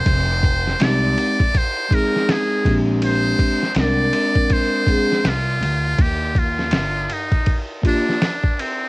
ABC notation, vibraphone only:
X:1
M:4/4
L:1/8
Q:"Swing 16ths" 1/4=81
K:Bbmix
V:1 name="Vibraphone"
z2 [A,CEG] z2 [A,CEA]2 [A,CDG]- | [A,CDG] z [A,CDB]3 [A,CDA] z2 | z4 z [B,DFG] z2 |]